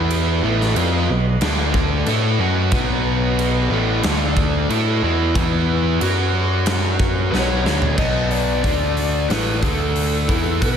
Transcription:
Already playing: E2 E3 B3 E4 B4 B5
0.11 crash
0.43 A1 A2 E3 A3 D#4 B4 D#5
0.61 snare
0.75 F2 F3 C4 F4, crash
1.09 B1 B2 F#3
1.41 D2 D3 A3 D4 A4 A5, snare, crash
1.74 kick
2.06 A2 A3 E4 A4 B4 D#5 F#5, crash
2.39 F#2 F#3 C#4 F#4
2.72 B1 B2 F#3 B3, kick, crash
3.39 crash
3.70 A1 A2 E3 A3
4.03 D2 D3 A3 D4 A4 A5, snare, crash
4.37 kick
4.69 A2 A3 E4 F#4 A4 D#5 B5, crash
5.02 E2 E3 B3 E4
5.34 E2 E3 B3 E4 B4 B5, kick, crash
6.00 F#2 F#3 C#4 F#4 C#5 C#6, crash
6.66 snare, crash
7.00 kick
7.31 B1 B2 F#3 B3 C#5 F#5 B5, snare
7.64 D2 D3 A3 D4, snare
7.82 floor tom
7.97 B1 B2 F#3 B3 D#5, kick, crash
8.30 D5, open hi-hat
8.63 D2 D3 A3 D4, kick, open hi-hat
8.97 open hi-hat
9.29 A1 A2 E3 A3 B4, snare, open hi-hat
9.62 D2 D3 A3 D4 A4, kick, open hi-hat
9.96 open hi-hat
10.28 E2 E3 B3 E4, kick, open hi-hat
10.62 B2 B3 F#4 B4, kick, open hi-hat

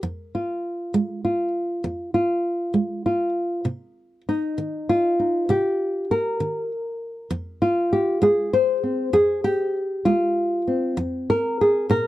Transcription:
0.03 F2
0.35 F4
0.94 G#3
1.25 F4
1.84 F2
2.14 F4
2.74 G#3
3.06 F4
3.65 C3
4.29 D#4
4.58 D#3
4.89 F4
5.20 D#4
5.49 C3 G4
6.11 A#4
6.40 D#3
7.31 F2
7.62 F4
7.93 G4
8.22 G#3 G#4
8.53 C5
8.83 C4
9.13 F2 G#4
9.44 G4
10.05 G#3 F4
10.68 C4
10.97 F2
11.30 A#4
11.61 G#4
11.90 A#2 A#4

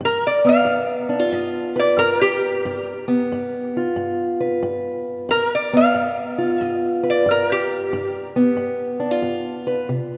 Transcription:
0.01 G2
0.05 A#4
0.27 D5
0.45 B3
0.49 F5
0.65 G2
1.09 D4
1.19 F4
1.32 G2 D#5
1.76 B4 D5
1.97 G2 A#4
2.21 G4
2.65 G2
3.08 B3
3.32 G2
3.77 F4
3.96 G2
4.40 B4
4.63 G2
5.29 G2 A#4
5.55 D5
5.73 B3 F5
5.94 G2
6.38 F4
6.61 G2 D#5
7.03 B4
7.10 D5
7.26 G2
7.31 A#4
7.52 G4
7.93 G2
8.36 B3
8.57 G2
9.00 D4
9.11 F4
9.22 G2
9.67 B4
9.89 C3

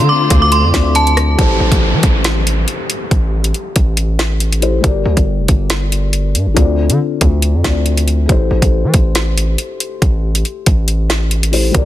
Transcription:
Already playing: D3 A3 C4 F4 D5
0.09 D6
0.30 D2, kick, closed hi-hat
0.42 D6
0.52 C6, closed hi-hat
0.64 F2
0.73 D2 D3 C4 F4 D5, kick, snare, closed hi-hat
0.95 A5, closed hi-hat
1.07 closed hi-hat
1.17 cross-stick, closed hi-hat
1.35 A1 A3 E4 G4, kick, closed hi-hat, downlifter
1.41 C5
1.60 A1
1.72 A1, kick, closed hi-hat
1.93 E3
2.03 A1, kick, closed hi-hat
2.24 snare, closed hi-hat
2.47 closed hi-hat
2.68 closed hi-hat
2.90 closed hi-hat
3.11 A1, kick, closed hi-hat
3.44 closed hi-hat
3.54 closed hi-hat
3.76 A1, kick, closed hi-hat
3.97 closed hi-hat
4.19 snare, closed hi-hat
4.40 closed hi-hat
4.53 closed hi-hat
4.60 A3 E4 G4 C5, closed hi-hat
4.81 G1 G3 G4 A#4, kick, closed hi-hat
4.86 D5
5.05 D2
5.17 G1, kick, closed hi-hat
5.39 F1
5.48 G1, kick, closed hi-hat
5.70 snare, closed hi-hat
5.92 closed hi-hat
6.13 closed hi-hat
6.35 G2, closed hi-hat
6.46 G1
6.54 D2 D3 C4 F4, kick, closed hi-hat
6.60 D5
6.90 D3, closed hi-hat
7.21 D2, kick, closed hi-hat
7.42 closed hi-hat
7.54 F2
7.63 D2 D3 C4 F4 D5, kick, snare, closed hi-hat
7.86 closed hi-hat
7.97 closed hi-hat
8.08 closed hi-hat
8.26 A1 A3 E4 G4, kick, closed hi-hat
8.31 C5
8.51 A1
8.62 A1, kick, closed hi-hat
8.84 E3
8.94 A1, kick, closed hi-hat
9.15 snare, closed hi-hat
9.38 closed hi-hat
9.58 closed hi-hat
9.80 closed hi-hat
10.02 A1, kick, closed hi-hat
10.35 closed hi-hat
10.45 closed hi-hat
10.66 A1, kick, closed hi-hat
10.88 closed hi-hat
11.10 snare, closed hi-hat
11.31 closed hi-hat
11.43 closed hi-hat
11.51 A3 E4 G4 C5, open hi-hat
11.71 G1 G3 G4 A#4, kick, closed hi-hat
11.77 D5

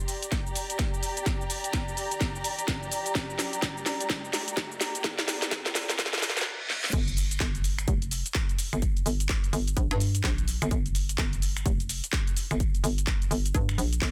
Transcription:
Already playing: G4 D5 A#5, riser
0.08 open hi-hat, shaker
0.23 closed hi-hat, shaker
0.32 kick, snare, closed hi-hat, shaker
0.47 shaker
0.55 open hi-hat, shaker
0.70 closed hi-hat, shaker
0.79 kick, snare, closed hi-hat, shaker
0.94 shaker
1.03 open hi-hat, shaker
1.17 closed hi-hat, shaker
1.26 kick, snare, closed hi-hat, shaker
1.41 shaker
1.50 open hi-hat, shaker
1.64 closed hi-hat, shaker
1.73 kick, snare, closed hi-hat, shaker
1.88 shaker
1.97 open hi-hat, shaker
2.11 closed hi-hat, shaker
2.21 kick, snare, closed hi-hat, shaker
2.36 shaker
2.44 open hi-hat, shaker
2.59 closed hi-hat, shaker
2.68 kick, snare, closed hi-hat, shaker
2.83 shaker
2.92 open hi-hat, shaker
3.06 closed hi-hat, shaker
3.15 kick, snare, closed hi-hat, shaker
3.30 shaker
3.39 snare, open hi-hat, shaker
3.53 closed hi-hat, shaker
3.62 kick, snare, closed hi-hat, shaker
3.77 shaker
3.86 snare, open hi-hat, shaker
4.01 closed hi-hat, shaker
4.10 kick, snare, closed hi-hat, shaker
4.25 shaker
4.33 snare, open hi-hat, shaker
4.48 closed hi-hat, shaker
4.57 kick, snare, closed hi-hat, shaker
4.72 shaker
4.81 snare, open hi-hat, shaker
4.95 closed hi-hat, shaker
5.04 kick, snare, closed hi-hat, shaker
5.19 snare, shaker
5.28 snare, open hi-hat, shaker
5.42 snare, closed hi-hat, shaker
5.51 kick, snare, closed hi-hat, shaker
5.66 snare, shaker
5.75 snare, open hi-hat, shaker
5.89 snare, closed hi-hat, shaker
5.99 kick, snare, closed hi-hat, reverse cymbal, shaker
6.06 snare
6.13 snare, shaker
6.18 snare
6.22 snare, open hi-hat, shaker
6.29 snare
6.37 snare, closed hi-hat, shaker
6.41 snare
6.70 snare
6.84 snare
6.93 G1, kick, closed hi-hat, crash, shaker
7.08 closed hi-hat, shaker
7.17 open hi-hat, shaker
7.31 closed hi-hat, shaker
7.40 G1, kick, clap, closed hi-hat, shaker
7.55 closed hi-hat, shaker
7.64 open hi-hat, shaker
7.79 finger snap, closed hi-hat, shaker
7.88 F1, kick, closed hi-hat, shaker
8.02 closed hi-hat, shaker
8.11 open hi-hat, shaker
8.26 closed hi-hat, shaker
8.35 kick, clap, closed hi-hat, shaker
8.49 closed hi-hat, shaker
8.58 open hi-hat, shaker
8.73 G1, finger snap, closed hi-hat, shaker
8.82 kick, closed hi-hat, shaker
8.97 closed hi-hat, shaker
9.06 G1, open hi-hat, shaker
9.20 closed hi-hat, shaker
9.29 kick, clap, closed hi-hat, shaker
9.44 closed hi-hat, shaker
9.53 G1, open hi-hat, shaker
9.68 closed hi-hat, shaker
9.77 A#1, kick, closed hi-hat, shaker
9.91 G2, finger snap, closed hi-hat, shaker
10.00 open hi-hat, shaker
10.15 closed hi-hat, shaker
10.24 A#1, kick, clap, open hi-hat, shaker
10.38 closed hi-hat, shaker
10.48 open hi-hat, shaker
10.62 G1, finger snap, closed hi-hat, shaker
10.71 G1, kick, closed hi-hat, shaker
10.86 closed hi-hat, shaker
10.95 open hi-hat, shaker
11.09 closed hi-hat, shaker
11.18 G1, kick, clap, closed hi-hat, shaker
11.33 closed hi-hat, shaker
11.42 open hi-hat, shaker
11.57 finger snap, closed hi-hat, shaker
11.66 F1, kick, closed hi-hat, shaker
11.80 closed hi-hat, shaker
11.89 open hi-hat, shaker
12.04 closed hi-hat, shaker
12.13 kick, clap, closed hi-hat, shaker
12.27 closed hi-hat, shaker
12.37 open hi-hat, shaker
12.51 G1, finger snap, closed hi-hat, shaker
12.60 kick, closed hi-hat, shaker
12.75 closed hi-hat, shaker
12.84 G1, open hi-hat, shaker
12.98 closed hi-hat, shaker
13.07 kick, clap, closed hi-hat, shaker
13.22 closed hi-hat, shaker
13.31 G1, open hi-hat, shaker
13.45 closed hi-hat, shaker
13.55 G2, kick, closed hi-hat, shaker
13.69 finger snap, closed hi-hat, shaker
13.78 A#1, open hi-hat, shaker
13.93 closed hi-hat, shaker
14.02 G1, kick, clap, open hi-hat, shaker

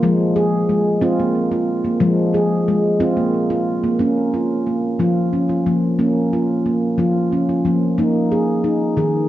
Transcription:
0.03 F3 G#3
0.36 G#4
0.69 G#3
1.01 C4 F4
1.20 A#3
1.51 F4
1.85 A#3
2.00 F3 G#3
2.34 G#4
2.68 G#3
3.00 C4 F4
3.17 A#3
3.50 F4
3.84 A#3
3.99 A#3 C#4
4.34 F4
4.67 A#3
4.99 F3 F4
5.33 C#4
5.49 F4
5.66 F3 A#3
5.99 A#3 C#4
6.33 F4
6.66 A#3
6.98 F3 F4
7.33 C#4
7.49 F4
7.65 F3 A#3
7.98 A#3 D#4
8.32 G#4
8.64 D#4
8.97 D#3 G#4

